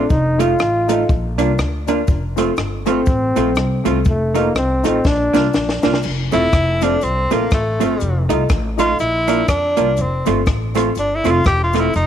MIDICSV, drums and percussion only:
0, 0, Header, 1, 2, 480
1, 0, Start_track
1, 0, Key_signature, -1, "major"
1, 0, Tempo, 493421
1, 101, Time_signature, 4, 2, 24, 8
1, 11739, End_track
2, 0, Start_track
2, 0, Title_t, "Drums"
2, 96, Note_on_c, 9, 69, 61
2, 101, Note_on_c, 9, 36, 110
2, 193, Note_off_c, 9, 69, 0
2, 198, Note_off_c, 9, 36, 0
2, 388, Note_on_c, 9, 42, 81
2, 390, Note_on_c, 9, 69, 71
2, 485, Note_off_c, 9, 42, 0
2, 487, Note_off_c, 9, 69, 0
2, 573, Note_on_c, 9, 69, 54
2, 584, Note_on_c, 9, 37, 102
2, 670, Note_off_c, 9, 69, 0
2, 681, Note_off_c, 9, 37, 0
2, 864, Note_on_c, 9, 69, 72
2, 871, Note_on_c, 9, 42, 106
2, 962, Note_off_c, 9, 69, 0
2, 968, Note_off_c, 9, 42, 0
2, 1063, Note_on_c, 9, 36, 122
2, 1065, Note_on_c, 9, 69, 60
2, 1161, Note_off_c, 9, 36, 0
2, 1162, Note_off_c, 9, 69, 0
2, 1348, Note_on_c, 9, 69, 74
2, 1349, Note_on_c, 9, 42, 77
2, 1445, Note_off_c, 9, 69, 0
2, 1446, Note_off_c, 9, 42, 0
2, 1540, Note_on_c, 9, 69, 62
2, 1547, Note_on_c, 9, 37, 116
2, 1638, Note_off_c, 9, 69, 0
2, 1644, Note_off_c, 9, 37, 0
2, 1826, Note_on_c, 9, 69, 79
2, 1831, Note_on_c, 9, 42, 76
2, 1923, Note_off_c, 9, 69, 0
2, 1928, Note_off_c, 9, 42, 0
2, 2017, Note_on_c, 9, 69, 59
2, 2025, Note_on_c, 9, 36, 106
2, 2114, Note_off_c, 9, 69, 0
2, 2122, Note_off_c, 9, 36, 0
2, 2307, Note_on_c, 9, 69, 76
2, 2314, Note_on_c, 9, 42, 85
2, 2404, Note_off_c, 9, 69, 0
2, 2412, Note_off_c, 9, 42, 0
2, 2496, Note_on_c, 9, 69, 54
2, 2510, Note_on_c, 9, 37, 107
2, 2593, Note_off_c, 9, 69, 0
2, 2607, Note_off_c, 9, 37, 0
2, 2782, Note_on_c, 9, 69, 68
2, 2792, Note_on_c, 9, 42, 94
2, 2879, Note_off_c, 9, 69, 0
2, 2889, Note_off_c, 9, 42, 0
2, 2976, Note_on_c, 9, 69, 61
2, 2987, Note_on_c, 9, 36, 109
2, 3073, Note_off_c, 9, 69, 0
2, 3085, Note_off_c, 9, 36, 0
2, 3269, Note_on_c, 9, 69, 81
2, 3276, Note_on_c, 9, 42, 77
2, 3366, Note_off_c, 9, 69, 0
2, 3373, Note_off_c, 9, 42, 0
2, 3457, Note_on_c, 9, 69, 67
2, 3473, Note_on_c, 9, 37, 107
2, 3555, Note_off_c, 9, 69, 0
2, 3571, Note_off_c, 9, 37, 0
2, 3749, Note_on_c, 9, 69, 75
2, 3752, Note_on_c, 9, 42, 77
2, 3846, Note_off_c, 9, 69, 0
2, 3850, Note_off_c, 9, 42, 0
2, 3937, Note_on_c, 9, 69, 60
2, 3948, Note_on_c, 9, 36, 113
2, 4034, Note_off_c, 9, 69, 0
2, 4046, Note_off_c, 9, 36, 0
2, 4232, Note_on_c, 9, 69, 77
2, 4234, Note_on_c, 9, 42, 81
2, 4329, Note_off_c, 9, 69, 0
2, 4331, Note_off_c, 9, 42, 0
2, 4429, Note_on_c, 9, 69, 55
2, 4435, Note_on_c, 9, 37, 104
2, 4527, Note_off_c, 9, 69, 0
2, 4532, Note_off_c, 9, 37, 0
2, 4708, Note_on_c, 9, 69, 72
2, 4720, Note_on_c, 9, 42, 100
2, 4806, Note_off_c, 9, 69, 0
2, 4818, Note_off_c, 9, 42, 0
2, 4905, Note_on_c, 9, 69, 58
2, 4912, Note_on_c, 9, 36, 109
2, 4915, Note_on_c, 9, 38, 63
2, 5003, Note_off_c, 9, 69, 0
2, 5009, Note_off_c, 9, 36, 0
2, 5012, Note_off_c, 9, 38, 0
2, 5196, Note_on_c, 9, 69, 78
2, 5202, Note_on_c, 9, 38, 65
2, 5293, Note_off_c, 9, 69, 0
2, 5300, Note_off_c, 9, 38, 0
2, 5382, Note_on_c, 9, 69, 65
2, 5392, Note_on_c, 9, 38, 84
2, 5479, Note_off_c, 9, 69, 0
2, 5490, Note_off_c, 9, 38, 0
2, 5534, Note_on_c, 9, 38, 81
2, 5631, Note_off_c, 9, 38, 0
2, 5670, Note_on_c, 9, 69, 82
2, 5674, Note_on_c, 9, 38, 96
2, 5767, Note_off_c, 9, 69, 0
2, 5771, Note_off_c, 9, 38, 0
2, 5774, Note_on_c, 9, 38, 100
2, 5861, Note_on_c, 9, 69, 59
2, 5871, Note_on_c, 9, 49, 97
2, 5872, Note_off_c, 9, 38, 0
2, 5958, Note_off_c, 9, 69, 0
2, 5969, Note_off_c, 9, 49, 0
2, 6145, Note_on_c, 9, 69, 75
2, 6160, Note_on_c, 9, 42, 85
2, 6242, Note_off_c, 9, 69, 0
2, 6257, Note_off_c, 9, 42, 0
2, 6346, Note_on_c, 9, 69, 53
2, 6352, Note_on_c, 9, 36, 118
2, 6353, Note_on_c, 9, 42, 78
2, 6355, Note_on_c, 9, 37, 101
2, 6444, Note_off_c, 9, 69, 0
2, 6449, Note_off_c, 9, 36, 0
2, 6451, Note_off_c, 9, 42, 0
2, 6452, Note_off_c, 9, 37, 0
2, 6627, Note_on_c, 9, 69, 74
2, 6637, Note_on_c, 9, 42, 103
2, 6724, Note_off_c, 9, 69, 0
2, 6734, Note_off_c, 9, 42, 0
2, 6821, Note_on_c, 9, 69, 57
2, 6835, Note_on_c, 9, 42, 76
2, 6918, Note_off_c, 9, 69, 0
2, 6932, Note_off_c, 9, 42, 0
2, 7109, Note_on_c, 9, 69, 80
2, 7119, Note_on_c, 9, 42, 77
2, 7206, Note_off_c, 9, 69, 0
2, 7216, Note_off_c, 9, 42, 0
2, 7302, Note_on_c, 9, 69, 64
2, 7310, Note_on_c, 9, 42, 84
2, 7313, Note_on_c, 9, 36, 113
2, 7314, Note_on_c, 9, 37, 123
2, 7399, Note_off_c, 9, 69, 0
2, 7408, Note_off_c, 9, 42, 0
2, 7410, Note_off_c, 9, 36, 0
2, 7411, Note_off_c, 9, 37, 0
2, 7594, Note_on_c, 9, 69, 80
2, 7596, Note_on_c, 9, 42, 78
2, 7691, Note_off_c, 9, 69, 0
2, 7693, Note_off_c, 9, 42, 0
2, 7782, Note_on_c, 9, 69, 59
2, 7792, Note_on_c, 9, 42, 66
2, 7880, Note_off_c, 9, 69, 0
2, 7890, Note_off_c, 9, 42, 0
2, 8071, Note_on_c, 9, 69, 77
2, 8076, Note_on_c, 9, 42, 83
2, 8168, Note_off_c, 9, 69, 0
2, 8173, Note_off_c, 9, 42, 0
2, 8259, Note_on_c, 9, 69, 55
2, 8266, Note_on_c, 9, 42, 76
2, 8267, Note_on_c, 9, 37, 100
2, 8268, Note_on_c, 9, 36, 116
2, 8357, Note_off_c, 9, 69, 0
2, 8363, Note_off_c, 9, 42, 0
2, 8365, Note_off_c, 9, 36, 0
2, 8365, Note_off_c, 9, 37, 0
2, 8546, Note_on_c, 9, 69, 73
2, 8555, Note_on_c, 9, 42, 101
2, 8643, Note_off_c, 9, 69, 0
2, 8653, Note_off_c, 9, 42, 0
2, 8744, Note_on_c, 9, 69, 55
2, 8755, Note_on_c, 9, 42, 78
2, 8841, Note_off_c, 9, 69, 0
2, 8852, Note_off_c, 9, 42, 0
2, 9024, Note_on_c, 9, 69, 81
2, 9038, Note_on_c, 9, 42, 84
2, 9121, Note_off_c, 9, 69, 0
2, 9135, Note_off_c, 9, 42, 0
2, 9223, Note_on_c, 9, 69, 65
2, 9225, Note_on_c, 9, 42, 80
2, 9226, Note_on_c, 9, 36, 109
2, 9229, Note_on_c, 9, 37, 124
2, 9320, Note_off_c, 9, 69, 0
2, 9322, Note_off_c, 9, 42, 0
2, 9324, Note_off_c, 9, 36, 0
2, 9326, Note_off_c, 9, 37, 0
2, 9503, Note_on_c, 9, 69, 73
2, 9504, Note_on_c, 9, 42, 80
2, 9600, Note_off_c, 9, 69, 0
2, 9602, Note_off_c, 9, 42, 0
2, 9695, Note_on_c, 9, 69, 62
2, 9705, Note_on_c, 9, 42, 64
2, 9792, Note_off_c, 9, 69, 0
2, 9802, Note_off_c, 9, 42, 0
2, 9981, Note_on_c, 9, 69, 72
2, 9991, Note_on_c, 9, 42, 78
2, 10078, Note_off_c, 9, 69, 0
2, 10088, Note_off_c, 9, 42, 0
2, 10175, Note_on_c, 9, 69, 55
2, 10184, Note_on_c, 9, 36, 118
2, 10186, Note_on_c, 9, 42, 80
2, 10187, Note_on_c, 9, 37, 109
2, 10272, Note_off_c, 9, 69, 0
2, 10282, Note_off_c, 9, 36, 0
2, 10283, Note_off_c, 9, 42, 0
2, 10284, Note_off_c, 9, 37, 0
2, 10456, Note_on_c, 9, 69, 73
2, 10479, Note_on_c, 9, 42, 104
2, 10554, Note_off_c, 9, 69, 0
2, 10576, Note_off_c, 9, 42, 0
2, 10654, Note_on_c, 9, 69, 58
2, 10675, Note_on_c, 9, 42, 80
2, 10751, Note_off_c, 9, 69, 0
2, 10773, Note_off_c, 9, 42, 0
2, 10939, Note_on_c, 9, 69, 80
2, 10958, Note_on_c, 9, 42, 75
2, 11037, Note_off_c, 9, 69, 0
2, 11055, Note_off_c, 9, 42, 0
2, 11130, Note_on_c, 9, 69, 61
2, 11147, Note_on_c, 9, 36, 104
2, 11148, Note_on_c, 9, 42, 81
2, 11151, Note_on_c, 9, 37, 127
2, 11227, Note_off_c, 9, 69, 0
2, 11244, Note_off_c, 9, 36, 0
2, 11245, Note_off_c, 9, 42, 0
2, 11248, Note_off_c, 9, 37, 0
2, 11413, Note_on_c, 9, 69, 75
2, 11434, Note_on_c, 9, 42, 79
2, 11510, Note_off_c, 9, 69, 0
2, 11531, Note_off_c, 9, 42, 0
2, 11610, Note_on_c, 9, 69, 61
2, 11630, Note_on_c, 9, 42, 60
2, 11707, Note_off_c, 9, 69, 0
2, 11727, Note_off_c, 9, 42, 0
2, 11739, End_track
0, 0, End_of_file